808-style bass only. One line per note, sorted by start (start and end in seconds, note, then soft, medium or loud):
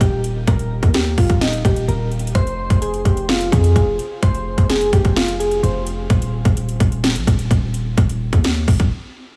0.01 0.46 D#1 loud
0.47 0.81 D#1 loud
0.83 1.16 D#2 loud
1.18 1.63 D#1 loud
1.65 1.87 D#1 loud
1.88 2.33 D#1 loud
2.35 2.69 F1 loud
2.70 3.04 F1 loud
3.05 3.50 F1 loud
3.52 3.75 F2 loud
3.76 3.98 F1 loud
4.23 4.56 F1 loud
4.58 4.92 F1 loud
4.93 5.60 F1 loud
5.63 6.08 F1 loud
6.10 6.44 D#1 loud
6.45 6.79 D#1 loud
6.80 7.17 D#1 loud
7.16 7.27 A#1 loud
7.27 7.50 D#1 loud
7.51 7.96 D#1 loud
7.98 8.31 D#1 loud
8.33 8.66 D#2 loud
8.68 8.90 D#1 loud